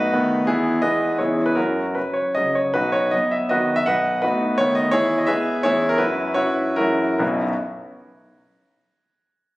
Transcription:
Already playing: B1 A3 B3 D#4 F#4 B4 D#5 F#5
0.13 D#3 A3 B3
0.47 E2 B3 E4 G#4
0.82 G#3 B3 G#4 B4 D#5
1.18 E2 E3 G#3 C#4 E4 G#4 C#5
1.46 B4
1.55 F#2 C#4 F#4 A#4
1.95 F#3 C#4 B4
2.14 C#5
2.35 C#3 F#3 C#4 D#5
2.55 C#5
2.74 B1 D#4 F#4 B4
2.92 C#5
3.11 F#3 B3 D#5
3.31 E5
3.49 D#3 F#3 B3 F#4 B4 D#5
3.76 E5
3.86 B1 B4 D#5 F#5
4.22 A3 B3 D#4 F#4 B4
4.58 D#3 A3 B3 C#5
4.75 D#5
4.91 E2 E4 G#4 C#5
5.18 D#5
5.26 G#3 B3 G#4 B4 E5
5.63 E2 E3 G#3 C#4 E4 G#4 C#5
5.89 A#4
5.98 F#2 E4 F#4 B4
6.34 F#3 C#4 E4 F#4 C#5
6.76 F#2 E3 G#3 C#4 E4 F#4 A#4
7.18 B1 F#2 F#3 B3 D#4 F#4 B4

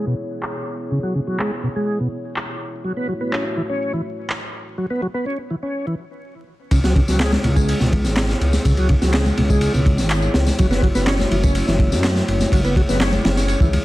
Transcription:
Already playing: B3 E4 G#4 C#5
0.07 B2
0.43 clap
0.91 C#3
1.03 F#3
1.15 C#3
1.27 F#3
1.39 G#3, clap
1.63 B2
1.76 G#3
2.00 B2
2.36 clap
2.84 F#3 A3 E4 F#4 C#5
2.97 B3
3.09 F#3
3.21 B3
3.33 C#4, clap
3.57 E3
3.69 C#4
3.93 E3
4.30 clap
4.78 F#3
4.90 B3
5.02 F#3
5.14 B3
5.26 C#4
5.50 E3
5.63 C#4
5.87 E3
6.71 C#2 C#3 B3 E4 G#4 C#5, kick, ride, tambourine
6.84 F#3, snare, tambourine
6.96 C#3, kick, ride
7.08 C#2 F#3, snare, tambourine
7.19 G#3, snare, clap, ride, tambourine
7.32 snare, tambourine, high conga
7.44 C#2 B2, ride
7.56 G#3, kick, tambourine
7.68 ride, tambourine
7.80 C#2 B2, snare, tambourine
7.92 kick, ride, high conga, low conga
8.04 G#1, snare, tambourine
8.16 snare, clap, ride, tambourine
8.29 snare, tambourine
8.41 C#2, ride
8.53 snare, tambourine, high conga
8.65 C#2 C#3, kick, ride, tambourine
8.77 F#3, ride, tambourine
8.89 C#3, kick, ride
9.01 C#2 F#3, snare, tambourine
9.13 G#3, snare, clap, ride, tambourine
9.25 ride, tambourine, high conga
9.37 C#2 B2, ride
9.50 G#3, kick, tambourine
9.61 ride, tambourine
9.74 C#2 B2, tambourine
9.86 kick, ride, high conga, low conga
9.98 G#1, snare, tambourine
10.10 clap, tambourine
10.22 tambourine
10.34 C#2, snare, ride
10.46 snare, tambourine, high conga
10.58 F#1 F#3 A3 F#4, kick, ride, tambourine
10.71 B3, snare, tambourine
10.82 F#3, kick, ride
10.95 F#1 B3, snare, tambourine
11.06 C#4, snare, clap, ride, tambourine
11.19 snare, tambourine, high conga
11.31 F#1 E3, ride
11.43 C#4, kick, tambourine
11.55 ride, tambourine
11.68 F#1 E3, snare, tambourine
11.79 kick, ride, high conga, low conga
11.92 F#2, snare, tambourine
12.04 snare, clap, ride, tambourine
12.16 snare, tambourine
12.28 F#1, ride
12.40 snare, tambourine, high conga
12.52 F#1 F#3 G#4, kick, ride, tambourine
12.64 B3, ride, tambourine
12.76 F#3, kick, ride
12.89 F#1 B3, snare, tambourine
13.00 C#4, snare, clap, ride, tambourine
13.12 ride, tambourine, high conga
13.25 F#1 E3, snare, ride
13.37 C#4, snare, tambourine
13.48 ride, tambourine
13.60 C#2 E3, kick, tambourine
13.73 ride, high conga, low conga

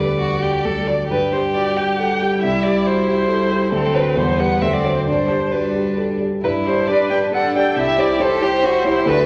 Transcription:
Already playing: D2 G3 B4 D5
0.00 G4
0.20 F#4
0.42 G4
0.65 D2 F#3 A4
0.87 F#4 D5
1.10 G2 G3 G4 B4
1.32 G4 C5
1.53 F#4 D5
1.76 G4 G5
1.98 A4 F#5
2.20 G4 G5
2.42 C2 E4 E5
2.63 G4 D5
2.85 F#4 C5
3.07 G4
3.28 A4
3.51 G4
3.72 D2 F#3 C4 A4
3.94 F#4 B4 C5
4.16 E2 G3 B3 C5
4.38 G4 B4 F#5
4.61 D2 F#3 C4 E5
4.73 D5
4.84 F#4 C5
4.95 C5
5.05 G2 G3 D4 C5
5.28 G4
5.51 G3 D4 F#4 B4
5.75 G4
5.97 A4
6.21 G4
6.43 G2 E4 B4
6.66 D4 G4 C5 D5
6.87 D4 G4 B4 D5
7.10 D4 G4 D5 G5
7.32 D4 G4 A4 D5 F#5
7.55 D4 G4 D5 G5
7.76 C2 E4 G4 E5
7.97 E4 G4 C5 D5
8.20 E4 G4 A4 C5
8.41 E4 G4 C5
8.63 E4 F#4 G4 C5
8.85 E4 G4 C5
9.06 D2 D4 F#4 B4

